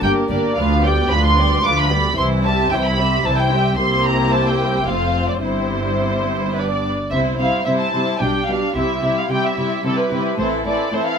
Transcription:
0.02 double bass section G1, cello section G2, viola section A#3 D4, violin section G4 A#4 G5
0.29 double bass section G1, cello section G2, viola section A#3 D4, violin section G4 A#4 D5
0.56 cello section D2, double bass section D2, viola section F3 D4, violin section F4 B4 F5
0.82 viola section G3 B3, violin section G4 D5 G5
1.10 double bass section D2, cello section D2, viola section F3 D4, violin section F4 B4 B5
1.26 violin section C6
1.36 viola section G3 B3, violin section G4 D5
1.63 double bass section D2, cello section D2, viola section F3 D4, violin section F4 B4 D6
1.78 violin section B5
1.89 viola section G3 B3, violin section G4 D5
2.16 cello section C2, double bass section C2, viola section E3 E4, violin section E4 C5 C6
2.44 viola section G3 C4, violin section G4 E5 A5
2.71 double bass section C2, cello section C2, viola section E3 E4, violin section E4 C5 G5
2.84 violin section B5
2.98 viola section G3 C4, violin section G4 E5
3.24 double bass section C2, cello section C2, viola section E3 E4, violin section E4 C5 A5
3.37 violin section G5
3.52 viola section G3 C4, violin section G4 E5
3.78 double bass section C2, cello section C2, viola section A#3 E4, violin section G4 C5 C6
4.05 violin section A#5
4.33 violin section A5
4.47 violin section G5
4.87 double bass section F1, cello section F2, viola section A3 C4, violin section F4 C5 F5
5.28 violin section D5
5.42 double bass section G1, cello section G2, viola section G3 C4, violin section E4 C5
6.55 viola section G3 B3, violin section D4 B4 D5
6.70 violin section D5
7.10 double bass section C2, cello section C3, viola section G3 C4, violin section E4 C5 E5
7.39 cello section C3, viola section G3 C4, violin section E4 C5 F5
7.65 cello section C3, viola section G3 C4, violin section E4 C5 E5
7.78 violin section A5
7.94 cello section C3, viola section G3 C4, violin section E4 C5
8.20 double bass section B1, cello section B2, viola section G3 D4, violin section D4 G4 G5
8.46 cello section B2, viola section G3 D4, violin section D4 G4 F5
8.75 double bass section C2, cello section C3, viola section G3 C4, violin section E4 G4 E5
9.02 cello section C3, viola section G3 C4, violin section E4 G4
9.18 violin section F5
9.29 cello section C3, viola section G3 C4, violin section E4 G4 G5
9.46 violin section E5
9.57 cello section C3, viola section G3 C4, violin section E4 G4
9.84 cello section C3, viola section G3 C4, violin section E4 G4 A4
9.99 violin section B4
10.11 cello section C3, viola section G3 C4, violin section E4 G4
10.38 double bass section A1, cello section A2, viola section E3 C4, violin section E4 A4 C5
10.65 cello section A2, viola section E3 C4, violin section E4 A4 D5
10.92 cello section A2, viola section E3 C4, violin section E4 A4 C5
11.07 violin section F5

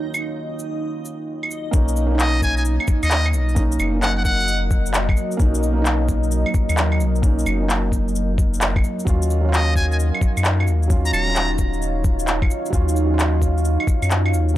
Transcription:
Already playing: felt piano D#2 F#3 A#3 C#4 F4, synth texture D#4 D#5, ambient pad D#4 C#5 F5
0.14 cabasa, claves
0.59 cabasa
1.05 cabasa
1.43 claves
1.51 cabasa
1.71 sub bass B1, felt piano A#3 C#4 D#4, kick, shaker
1.84 ambient pad F#3
1.88 shaker
1.93 ambient pad A#4, cabasa
2.07 felt piano A#3
2.11 felt piano C#4
2.15 felt piano D#4
2.19 muted trumpet D#5, clap, shaker
2.38 ambient pad D#5, kick
2.43 muted trumpet G#5, cabasa
2.57 muted trumpet G#5, shaker
2.65 shaker
2.80 claves
2.88 kick, cabasa
3.03 sub bass D#2, muted trumpet D#5, claves, shaker
3.11 clap, shaker
3.26 claves
3.33 sub bass B1, cabasa
3.49 shaker
3.55 felt piano A#3 C#4, kick, shaker
3.59 felt piano D#4
3.72 shaker
3.79 sub bass F#1, cabasa, claves
3.92 felt piano A#3 C#4
3.96 felt piano D#4
4.02 muted trumpet F#5, clap, shaker
4.18 muted trumpet F#5
4.24 muted trumpet F#5, kick, cabasa
4.40 shaker
4.48 shaker
4.71 kick, cabasa
4.86 shaker
4.94 clap, shaker
5.09 kick, claves
5.17 cabasa
5.32 cabasa, shaker
5.37 sub bass B1, felt piano A#3 C#4, kick, shaker
5.42 felt piano D#4
5.55 shaker
5.63 cabasa
5.74 felt piano A#3
5.78 felt piano C#4
5.82 felt piano D#4, clap, shaker
6.09 kick, cabasa
6.23 shaker
6.31 shaker
6.46 claves
6.54 kick, cabasa
6.69 sub bass D#2, claves, shaker
6.77 clap, shaker
6.92 claves
7.00 sub bass B1, cabasa
7.16 shaker
7.22 felt piano A#3 C#4 D#4, kick, shaker
7.39 shaker
7.46 sub bass F#1, cabasa, claves
7.60 felt piano A#3 C#4 D#4
7.70 clap, shaker
7.92 kick, cabasa
8.08 shaker
8.16 shaker
8.38 kick, cabasa
8.54 shaker
8.61 clap, shaker
8.76 kick, claves
8.84 cabasa
9.00 cabasa, shaker
9.05 sub bass D#2, felt piano F#3 C#4, ambient pad D#4, kick, shaker
9.09 felt piano F4
9.22 ambient pad F5, shaker
9.30 cabasa
9.41 felt piano F#3 C#4
9.49 felt piano F4
9.54 muted trumpet D#5, clap, shaker
9.67 ambient pad C#5
9.76 muted trumpet G#5, kick, cabasa
9.92 muted trumpet G#5, shaker
10.00 shaker
10.15 claves
10.21 kick, cabasa
10.37 sub bass F#2, claves, shaker
10.45 clap, shaker
10.60 claves
10.67 sub bass D#2, cabasa
10.83 shaker
10.88 felt piano F#3 C#4, kick, shaker
10.92 felt piano F4
11.05 muted trumpet A#5, shaker
11.12 sub bass D#1, muted trumpet A#5, cabasa, claves
11.26 felt piano F#3 C#4 F4
11.36 clap, shaker
11.58 kick, cabasa
11.74 shaker
11.82 shaker
12.04 kick, cabasa
12.19 shaker
12.28 clap, shaker
12.42 kick, claves
12.51 cabasa
12.66 cabasa, shaker
12.70 sub bass D#2, felt piano F#3 C#4 F4, kick, shaker
12.89 shaker
12.96 cabasa
13.06 felt piano F#3 C#4
13.14 felt piano F4
13.19 clap, shaker
13.42 kick, cabasa
13.58 shaker
13.65 shaker
13.80 claves
13.87 kick, cabasa
14.02 sub bass F#2, claves, shaker
14.11 clap, shaker
14.26 claves
14.33 sub bass D#2, cabasa
14.49 shaker
14.54 felt piano F#3

